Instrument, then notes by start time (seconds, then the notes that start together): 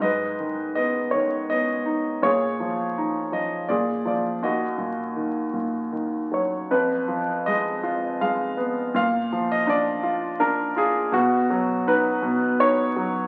grand piano
0.00 G#2 B4 D#5
0.40 D#3
0.75 B3 D#5
1.11 D#3 C#5
1.50 B3 D#5
1.86 D#4
2.22 A#2 G#4 C#5
2.60 F3
2.98 D#4
3.32 F3 D#5
3.69 A#2 G#4 D5
4.05 F3 D5
4.42 D#2 F#4 D#5
4.78 A#2
5.16 D#3
5.53 A#2
5.92 D#3
6.32 F#3 C#5
6.71 F2 B4
7.08 F3
7.46 G#3 D#5
7.83 F4
8.21 G#3 F5
8.57 B3
8.94 A#2 F5
9.33 F3
9.52 D#5
9.67 D4 D5
10.03 F4
10.40 D4 A#4
10.76 F4 G#4
11.12 B2 F#4
11.50 F#3
11.87 D#4 B4
12.22 B2
12.59 D#4 C#5
12.96 F#3